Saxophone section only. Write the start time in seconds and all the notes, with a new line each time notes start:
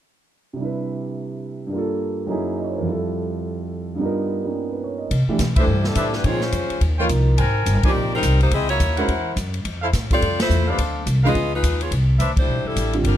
5.60 G3 D4 E4 C5
5.88 G3 D4 E4 A4
6.15 G3 D4 E4 B4
6.25 G#3 C4 F4 C#5
6.43 G#3 C#4 F4 C5
7.88 C4 G4 A#4 D5
8.15 G3 C4 D#4 A#4
8.42 A#3 D#4 G4 C5
8.53 C4 E4 G#4 D#5
8.70 A#3 E4 F#4 C#5
10.13 C4 F4 A4 D5
10.42 A3 E4 F4 C5
10.69 B3 E4 G4 D5
11.27 B3 F4 G#4 D#5
11.55 G#3 D#4 F4 B4
11.82 B3 F4 G#4 C#5
12.39 G3 D4 E4 C5
12.67 G3 D4 E4 A4
13.07 G3 D4 F4 A#4